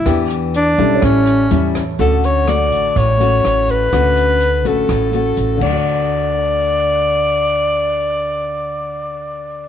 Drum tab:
CC |--------|--------|-------x|--------|
HH |xxxxxxxx|xxxxxxxx|xxxxxxx-|--------|
SD |r---r--r|--r---r-|r---r---|--------|
BD |o--oo--o|o--oo--o|o--oo--o|--------|

CC |--------|
HH |--------|
SD |--------|
BD |--------|